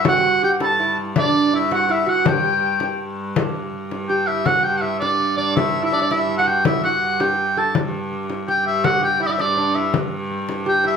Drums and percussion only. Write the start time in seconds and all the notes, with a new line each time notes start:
0.05 frame drum
0.24 frame drum
0.60 frame drum
0.98 frame drum
1.16 frame drum
1.35 frame drum
1.71 frame drum
2.08 frame drum
2.26 frame drum
2.44 frame drum
2.80 frame drum
3.36 frame drum
3.73 frame drum
3.91 frame drum
4.10 frame drum
4.28 frame drum
4.46 frame drum
4.83 frame drum
5.02 frame drum
5.20 frame drum
5.38 frame drum
5.57 frame drum
5.93 frame drum
6.11 frame drum
6.29 frame drum
6.47 frame drum
6.65 frame drum
7.20 frame drum
7.57 frame drum
7.75 frame drum
8.12 frame drum
8.30 frame drum
8.48 frame drum
8.67 frame drum
8.84 frame drum
9.22 frame drum
9.40 frame drum
9.58 frame drum
9.76 frame drum
9.94 frame drum
10.31 frame drum
10.49 frame drum
10.67 frame drum
10.85 frame drum